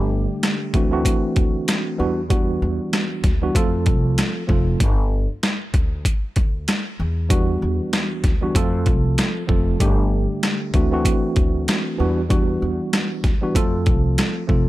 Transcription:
0.00 0.25 G1 loud
0.00 0.74 D3 medium
0.00 0.74 G3 medium
0.00 0.73 A3 medium
0.00 0.73 D4 medium
0.00 0.75 G4 loud
0.43 snare loud
0.43 closed hi-hat medium
0.73 1.03 D2 medium
0.73 0.90 E3 medium
0.73 0.91 A3 medium
0.73 0.91 C4 medium
0.73 0.91 D4 medium
0.73 0.92 F#4 medium
0.73 kick medium
0.73 closed hi-hat medium
0.91 1.97 E3 medium
0.91 1.99 A3 medium
0.91 1.99 C4 medium
0.91 1.98 D4 medium
0.91 1.99 F#4 loud
1.05 kick loud
1.05 closed hi-hat loud
1.36 1.65 D2 medium
1.36 kick loud
1.36 closed hi-hat soft
1.68 snare loud
1.68 closed hi-hat medium
1.98 2.58 E2 medium
1.98 2.20 E3 medium
1.98 2.20 G3 medium
1.98 2.21 B3 medium
1.98 2.21 D4 medium
1.98 2.21 F#4 loud
2.29 3.31 E3 medium
2.29 3.31 G3 medium
2.29 3.32 B3 medium
2.29 3.32 D4 medium
2.29 3.32 F#4 loud
2.29 kick loud
2.29 closed hi-hat medium
2.62 2.78 E2 medium
2.93 snare loud
2.93 closed hi-hat medium
3.24 3.52 D2 medium
3.24 kick medium
3.24 snare soft
3.24 closed hi-hat medium
3.41 3.55 E3 medium
3.41 3.55 G3 medium
3.41 3.56 B3 medium
3.41 3.56 D4 medium
3.41 3.56 F#4 loud
3.55 3.88 F2 loud
3.55 4.42 F3 medium
3.55 4.42 A3 medium
3.55 4.43 C4 medium
3.55 4.43 F4 medium
3.55 4.43 A4 loud
3.55 kick medium
3.55 closed hi-hat loud
3.86 4.15 C2 medium
3.86 kick loud
3.86 closed hi-hat medium
4.18 snare loud
4.18 closed hi-hat medium
4.47 4.78 F1 loud
4.47 4.77 F3 medium
4.47 4.77 A3 medium
4.47 4.78 C4 medium
4.47 4.78 F4 medium
4.47 4.78 A4 medium
4.47 kick medium
4.80 5.25 G1 loud
4.80 kick loud
4.80 closed hi-hat medium
5.43 snare loud
5.43 closed hi-hat medium
5.74 6.03 D2 medium
5.74 kick medium
5.74 closed hi-hat medium
6.05 kick medium
6.05 closed hi-hat loud
6.36 6.65 D2 medium
6.36 kick loud
6.36 closed hi-hat medium
6.68 snare loud
6.68 closed hi-hat medium
7.00 7.58 E2 loud
7.29 8.31 E3 medium
7.29 8.31 G3 medium
7.29 8.32 B3 medium
7.29 8.32 D4 medium
7.29 8.32 F#4 loud
7.29 kick loud
7.29 closed hi-hat medium
7.62 7.78 E2 medium
7.93 snare loud
7.93 closed hi-hat medium
8.24 8.53 D2 medium
8.24 kick medium
8.24 snare soft
8.24 closed hi-hat medium
8.41 8.55 E3 medium
8.41 8.55 G3 medium
8.41 8.56 B3 medium
8.41 8.56 D4 medium
8.41 8.56 F#4 loud
8.55 8.88 F2 loud
8.55 9.42 F3 medium
8.55 9.42 A3 medium
8.55 9.43 C4 medium
8.55 9.43 F4 medium
8.55 9.43 A4 loud
8.55 kick medium
8.55 closed hi-hat loud
8.86 9.15 C2 loud
8.86 kick loud
8.86 closed hi-hat soft
9.18 snare loud
9.18 closed hi-hat medium
9.47 9.78 F1 loud
9.47 9.77 F3 medium
9.47 9.78 A3 medium
9.47 9.78 C4 medium
9.47 9.78 F4 medium
9.47 9.78 A4 medium
9.47 kick loud
9.80 10.25 G1 loud
9.80 10.74 D3 medium
9.80 10.74 G3 medium
9.80 10.73 A3 medium
9.80 10.74 D4 medium
9.80 10.75 G4 loud
9.80 kick loud
9.80 closed hi-hat medium
10.43 snare loud
10.43 closed hi-hat medium
10.73 11.02 D2 loud
10.73 10.90 E3 medium
10.73 10.91 A3 medium
10.73 10.91 C4 medium
10.73 10.91 D4 medium
10.73 10.92 F#4 medium
10.73 kick medium
10.73 closed hi-hat medium
10.91 11.97 E3 medium
10.91 11.99 A3 medium
10.91 11.99 C4 medium
10.91 11.99 D4 medium
10.91 11.99 F#4 loud
11.05 kick medium
11.05 closed hi-hat loud
11.36 11.65 D2 medium
11.36 kick loud
11.36 closed hi-hat medium
11.68 snare loud
11.68 closed hi-hat medium
11.98 12.58 E2 medium
11.98 12.20 E3 loud
11.98 12.20 G3 medium
11.98 12.21 B3 medium
11.98 12.21 D4 medium
11.98 12.21 F#4 loud
12.29 13.31 E3 medium
12.29 13.31 G3 medium
12.29 13.32 B3 medium
12.29 13.32 D4 medium
12.29 13.32 F#4 loud
12.29 kick loud
12.29 closed hi-hat medium
12.62 12.78 E2 medium
12.93 snare loud
12.93 closed hi-hat medium
13.24 13.53 D2 medium
13.24 kick medium
13.24 snare soft
13.24 closed hi-hat medium
13.41 13.55 E3 medium
13.41 13.55 G3 medium
13.41 13.56 B3 medium
13.41 13.56 D4 medium
13.41 13.56 F#4 loud
13.55 13.88 F2 loud
13.55 14.42 F3 medium
13.55 14.42 A3 medium
13.55 14.43 C4 medium
13.55 14.43 F4 medium
13.55 14.43 A4 loud
13.55 kick medium
13.55 closed hi-hat loud
13.86 14.15 C2 medium
13.86 kick loud
13.86 closed hi-hat medium
14.18 snare loud
14.18 closed hi-hat medium
14.47 14.69 F1 medium
14.47 14.69 F3 medium
14.47 14.69 A3 medium
14.47 14.69 C4 medium
14.47 14.69 F4 medium
14.47 14.69 A4 medium
14.47 kick medium

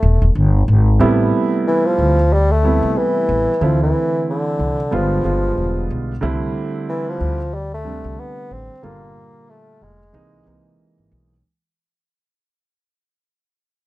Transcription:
0.00 0.20 E1 medium
0.00 0.36 A3 loud
0.22 0.34 E1 medium
0.35 0.65 G1 medium
0.68 0.98 G#1 medium
0.99 1.30 A1 medium
0.99 2.15 C3 medium
0.99 2.15 G3 medium
0.99 2.15 A3 medium
0.99 2.15 B3 medium
0.99 2.16 E4 medium
1.68 1.87 E3 medium
1.86 2.34 F3 medium
1.99 2.79 D2 medium
2.33 2.53 G3 loud
2.51 2.99 A3 medium
2.63 3.50 C3 medium
2.63 3.50 G3 medium
2.63 3.50 A3 medium
2.63 3.50 B3 medium
2.63 3.51 E4 medium
2.83 2.95 C2 medium
2.98 3.62 E3 medium
3.29 3.46 A1 medium
3.61 3.91 D2 medium
3.61 4.76 D3 medium
3.61 4.76 E3 medium
3.61 3.80 F3 medium
3.61 4.76 A3 medium
3.61 4.77 C4 medium
3.61 4.77 E4 medium
3.83 4.25 E3 medium
4.30 4.96 D3 medium
4.59 4.89 C2 medium
4.91 5.22 G1 medium
4.91 5.20 D3 medium
4.91 5.91 F3 medium
4.91 5.20 G3 medium
4.91 5.21 G#3 medium
4.91 5.21 B3 medium
4.91 5.21 F4 medium
5.23 5.54 G1 medium
5.23 6.10 D3 medium
5.23 6.11 G3 medium
5.23 6.11 G#3 medium
5.23 6.11 B3 medium
5.23 6.11 F4 medium
5.58 5.87 E1 medium
5.90 6.20 B1 medium
6.21 6.52 C2 medium
6.21 7.36 D3 medium
6.21 7.37 G3 medium
6.21 7.37 A3 medium
6.21 7.37 C4 medium
6.21 7.37 E4 medium
6.89 7.10 E3 medium
7.09 7.55 F3 medium
7.20 8.00 D2 medium
7.54 7.72 G3 medium
7.74 8.21 A3 medium
7.85 8.72 C3 medium
7.85 8.72 D3 medium
7.85 8.72 G3 medium
7.85 8.72 A3 medium
7.85 8.72 D4 medium
8.04 8.17 C2 medium
8.20 8.54 B3 medium
8.51 8.68 A1 medium
8.51 8.86 C4 medium
8.82 9.13 G1 medium
8.82 9.98 A#2 medium
8.82 9.98 D3 medium
8.82 9.98 G3 medium
8.82 9.51 A#3 medium
8.82 9.98 F4 medium
8.82 9.98 A4 medium
9.50 9.85 A3 medium
9.81 10.11 F1 medium
9.81 10.80 G#3 medium
10.13 10.43 C2 medium
10.13 10.42 C3 medium
10.13 10.42 E3 medium
10.13 10.42 G#3 medium
10.13 10.43 A#3 medium
10.13 10.43 D#4 medium
10.45 10.76 C2 medium
10.45 11.32 C3 medium
10.45 11.32 E3 medium
10.45 11.33 G#3 medium
10.45 11.33 A#3 medium
10.45 11.33 D#4 medium
10.98 11.10 G#1 medium
11.12 11.41 B1 medium

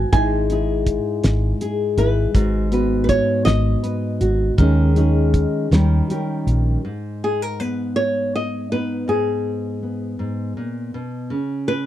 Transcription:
0.00 0.12 G#2 medium
0.00 0.13 B3 medium
0.00 0.15 B4 medium
0.00 0.11 G#5 medium
0.12 0.97 G#1 medium
0.12 2.33 G#2 medium
0.12 2.38 G#3 medium
0.12 0.51 D#4 medium
0.12 0.50 E4 medium
0.12 0.52 G#4 medium
0.12 1.98 G#5 loud
0.12 kick medium
0.12 closed hi-hat medium
0.50 2.71 D#4 medium
0.50 1.97 E4 medium
0.50 1.61 G#4 medium
0.50 closed hi-hat soft
0.87 kick medium
0.87 closed hi-hat soft
1.24 1.52 G#1 medium
1.24 snare medium
1.24 closed hi-hat medium
1.61 2.72 G#4 medium
1.61 closed hi-hat medium
1.97 2.25 G#1 medium
1.97 2.30 E4 medium
1.97 2.68 B4 medium
1.97 closed hi-hat medium
2.34 3.19 G#1 medium
2.34 4.58 G#2 medium
2.34 2.71 F#4 medium
2.34 kick medium
2.34 closed hi-hat medium
2.72 4.58 B3 medium
2.72 4.19 F#4 medium
2.72 3.82 B4 medium
2.72 closed hi-hat soft
3.04 3.09 B4 medium
3.09 3.45 C#5 medium
3.09 kick medium
3.09 closed hi-hat soft
3.45 3.74 G#1 medium
3.45 6.05 D#5 loud
3.45 snare medium
3.45 closed hi-hat medium
3.83 4.53 B4 medium
3.83 closed hi-hat medium
4.21 4.49 G#1 medium
4.21 4.53 F#4 medium
4.21 closed hi-hat soft
4.58 5.44 D#2 medium
4.58 5.67 D#3 medium
4.58 5.67 G#3 medium
4.58 4.95 C#4 medium
4.58 4.96 D#4 medium
4.58 4.96 G#4 medium
4.58 kick medium
4.58 closed hi-hat medium
4.96 5.67 C#4 medium
4.96 5.72 D#4 medium
4.96 5.72 G#4 medium
4.96 closed hi-hat soft
5.34 kick medium
5.34 closed hi-hat soft
5.71 6.00 D#2 medium
5.71 6.80 D#3 medium
5.71 6.80 G3 soft
5.71 6.08 C#4 soft
5.71 6.10 G4 medium
5.71 6.10 A#4 medium
5.71 snare medium
5.71 closed hi-hat medium
6.10 6.80 C#4 soft
6.10 6.81 G4 medium
6.10 6.81 A#4 medium
6.10 closed hi-hat soft
6.47 6.75 A#1 medium
6.47 closed hi-hat soft
6.85 9.06 G#2 medium
7.24 7.42 G#4 medium
7.42 7.60 A#4 medium
7.60 8.70 B3 soft
7.60 7.96 B4 medium
7.96 8.34 C#5 medium
8.35 8.72 D#5 medium
8.71 9.82 B3 soft
8.71 9.09 D#4 soft
8.71 9.08 B4 medium
9.08 10.18 G#2 medium
9.08 10.52 G#4 medium
9.83 11.30 B3 soft
10.19 10.56 G#2 medium
10.57 10.93 A#2 medium
10.94 11.31 B2 medium
11.30 11.86 C#3 medium
11.68 11.86 B4 medium

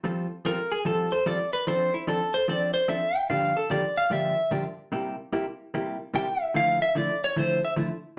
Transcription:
0.04 0.26 F3 medium
0.04 0.26 G3 medium
0.04 0.26 C4 medium
0.04 0.26 F4 medium
0.04 0.26 A4 medium
0.45 0.56 F3 medium
0.45 0.57 G3 medium
0.45 0.57 C4 medium
0.45 0.57 F4 medium
0.45 0.57 A4 medium
0.45 0.71 A#4 medium
0.72 0.85 G#4 medium
0.85 1.07 F3 medium
0.85 1.07 G3 medium
0.85 1.08 C4 medium
0.85 1.08 F4 medium
0.85 1.11 A4 medium
0.85 1.08 A4 medium
1.12 1.26 C5 medium
1.26 1.38 F3 medium
1.26 1.38 G3 medium
1.26 1.38 C4 medium
1.26 1.38 F4 medium
1.26 1.38 A4 medium
1.26 1.52 D5 medium
1.53 1.67 B4 medium
1.67 1.89 F3 medium
1.67 1.89 C4 medium
1.67 1.89 D4 medium
1.67 1.90 A4 medium
1.67 1.93 C5 medium
1.94 2.08 E4 soft
2.07 2.19 F3 medium
2.07 2.19 C4 medium
2.07 2.20 D4 medium
2.07 2.20 A4 medium
2.07 2.34 A4 medium
2.34 2.48 C5 medium
2.48 2.70 F3 medium
2.48 2.71 C4 medium
2.48 2.71 D4 medium
2.48 2.71 A4 medium
2.48 2.73 D5 loud
2.74 2.88 C5 medium
2.88 3.00 F3 medium
2.88 3.00 C4 medium
2.88 3.01 D4 medium
2.88 3.01 A4 medium
2.88 3.16 E5 medium
3.16 3.29 G5 loud
3.30 3.52 G2 medium
3.30 3.52 D3 medium
3.30 3.52 F3 medium
3.30 3.52 A#3 medium
3.30 3.52 D4 medium
3.30 3.52 G4 medium
3.30 3.55 F5 medium
3.57 3.70 A4 medium
3.70 3.82 G2 medium
3.70 3.82 D3 medium
3.70 3.82 F3 medium
3.70 3.82 A#3 medium
3.70 3.83 D4 medium
3.70 3.83 G4 medium
3.70 3.96 D5 medium
3.97 4.11 F5 loud
4.10 4.33 G2 medium
4.10 4.33 D3 medium
4.10 4.33 F3 medium
4.10 4.33 A#3 medium
4.10 4.33 D4 medium
4.10 4.34 G4 medium
4.10 4.50 E5 medium
4.51 4.63 G2 medium
4.51 4.63 D3 medium
4.51 4.63 F3 medium
4.51 4.63 A#3 medium
4.51 4.63 D4 medium
4.51 4.64 G4 medium
4.92 5.14 C3 medium
4.92 5.15 G3 medium
4.92 5.15 A#3 medium
4.92 5.15 E4 medium
4.92 5.15 G4 medium
5.33 5.45 C3 medium
5.33 5.45 G3 medium
5.33 5.45 A#3 medium
5.33 5.45 E4 medium
5.33 5.45 G4 medium
5.74 5.96 C3 medium
5.74 5.96 G3 medium
5.74 5.97 A#3 medium
5.74 5.97 E4 medium
5.74 5.97 G4 medium
6.14 6.26 C3 medium
6.14 6.26 G3 medium
6.14 6.27 A#3 medium
6.14 6.27 E4 medium
6.14 6.27 G4 medium
6.14 6.42 G5 medium
6.42 6.56 E5 loud
6.54 6.77 D3 medium
6.54 6.77 F3 medium
6.54 6.78 A3 medium
6.54 6.78 E4 medium
6.54 6.82 F5 loud
6.82 6.96 E5 medium
6.95 7.08 D3 medium
6.95 7.08 F3 medium
6.95 7.08 A3 medium
6.95 7.08 E4 medium
6.95 7.23 D5 medium
7.24 7.38 C#5 medium
7.36 7.59 D3 medium
7.36 7.59 F3 medium
7.36 7.59 A3 medium
7.36 7.60 E4 medium
7.36 7.64 C5 medium
7.65 7.73 E5 loud
7.76 7.89 D3 medium
7.76 7.89 F3 medium
7.76 7.89 A3 medium
7.76 7.90 E4 medium

